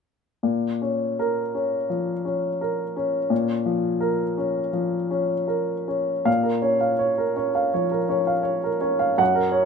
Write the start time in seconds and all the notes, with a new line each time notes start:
0.43 A#2
0.82 C#4
1.19 A#4
1.55 C#4
1.90 F3
2.25 C#4
2.61 A#4
2.96 C#4
3.30 A#2
3.66 F3
4.00 A#4
4.37 C#4
4.73 F3
5.11 C#4
5.48 A#4
5.88 C#4
6.25 A#2 F5
6.43 A#4
6.62 C#4 C#5
6.81 F5
6.99 C#5
7.18 A#4
7.36 C#4 C#5
7.55 F5
7.74 F3 C#5
7.92 A#4
8.09 C#4 C#5
8.27 F5
8.43 C#5
8.64 A#4
8.81 C#4 C#5
8.99 F5
9.18 F#2 F#5
9.35 A#4
9.51 C#4 C#5